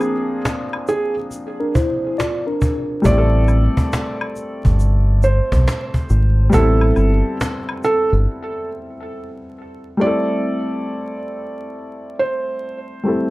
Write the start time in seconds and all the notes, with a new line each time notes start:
Already playing: F3 A#3 C4 D4 G#4
0.01 cajon slap, high woodblock, shaker
0.45 cajon slap, shaker
0.73 high woodblock
0.88 G#4, cajon slap, shaker
1.17 cajon slap
1.31 cajon slap, shaker
1.60 D4 A#4
1.75 E4 C5, cajon bass, shaker
2.18 F4 D5, cajon slap, shaker
2.47 D4 A#4
2.61 cajon bass, shaker
3.02 A1 G3 A3 D5, cajon bass, shaker
3.06 C4 E4
3.11 G4
3.18 A4
3.48 cajon slap, high woodblock, shaker
3.77 cajon bass
3.93 cajon slap, shaker
4.21 high woodblock
4.36 cajon slap, shaker
4.65 G1, cajon bass
4.79 cajon slap, shaker
5.22 C5, cajon slap, shaker
5.52 B1, cajon bass
5.68 cajon slap, shaker
5.94 cajon bass
6.10 G#1, shaker
6.49 A1 G3 B3, cajon bass, shaker
6.54 C4 E4 A4
6.59 A4
6.81 high woodblock
6.96 G1, cajon slap, high woodblock, shaker
7.41 cajon slap, shaker
7.69 high woodblock
7.84 A4, cajon slap, shaker
8.12 G1, cajon slap
9.97 G3 A3
10.01 C4 E4 D5
10.07 A4
12.19 C5
13.03 G3 A3 C4 E4
13.08 A4